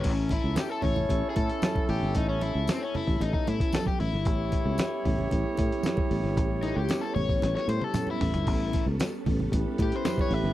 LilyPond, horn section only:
\new Staff \with { instrumentName = "Horn section" } { \time 4/4 \key a \mixolydian \tempo 4 = 114 <cis' e' a'>1~ | <cis' e' a'>2.~ <cis' e' a'>8 r8 | <e' g' cis''>1~ | <e' g' cis''>2.~ <e' g' cis''>8 r8 |
r2 <e' g' b'>2 | }